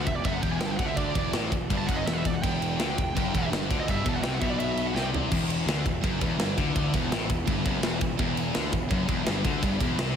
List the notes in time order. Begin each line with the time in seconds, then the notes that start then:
0.06 E1 E2 E5, kick, ride
0.16 D5
0.25 F#1 F#2 E5, kick, ride
0.33 F#5
0.42 E1 E2 G5, kick, ride
0.52 G#5
0.60 G1 G2 G5, snare, ride
0.66 A5
0.72 G5
0.77 D2 D3 F#5, kick, ride
0.86 E5
0.97 D5, kick, ride
1.15 E1 E2, kick, ride
1.33 A1 A2, snare, ride
1.51 E1 E2, kick, ride
1.70 G1 G2, kick, ride
1.78 A5
1.87 F#1 F#2 F#5, kick, ride
1.96 D#5
2.05 E1 E2 E5, snare, ride
2.13 F#5
2.18 E5
2.25 E1 E2 D5, kick, ride
2.34 F#5
2.43 E1 E2 G5, kick, ride
2.62 ride
2.79 D2 D3, snare, ride
2.98 E1 E2, kick, ride
3.16 F#1 F#2, kick, ride
3.34 E1 E2, kick, ride
3.51 G1 G2, snare, ride
3.69 D2 D3, kick, ride
3.80 D#5
3.87 G1 G2 E5, kick, ride
4.05 E1 E2 A5, kick, ride
4.16 F#5
4.23 C2 C3 G5, snare, ride
4.34 F#5
4.40 B1 B2 E5, kick, ride
4.50 D5
4.60 E5, ride
4.77 ride
4.87 F#5
4.93 C2 C3 G5, snare
5.14 floor tom
5.32 E1 E2 E3 B3 E4, kick, crash
5.50 ride
5.66 D2 D3, snare, ride
5.85 E1 E2, kick, ride
6.03 F#1 F#2, kick, ride
6.21 E1 E2, kick, ride
6.37 G1 G2, snare, ride
6.57 D2 D3, kick, ride
6.76 kick, ride
6.94 E1 E2, kick, ride
7.10 A1 A2, snare, ride
7.30 E1 E2, kick, ride
7.47 G1 G2, kick, ride
7.65 F#1 F#2, kick, ride
7.83 E1 E2, snare, ride
8.00 E1 E2, kick, ride
8.19 E1 E2, kick, ride
8.37 ride
8.54 D2 D3, snare, ride
8.72 E1 E2, kick, ride
8.90 F#1 F#2, kick, ride
9.08 E1 E2, kick, ride
9.25 G1 G2, snare, ride
9.45 D2 D3, kick, ride
9.63 G1 G2, kick, ride
9.80 E1 E2, kick, ride
9.95 C2, snare, ride
9.99 C3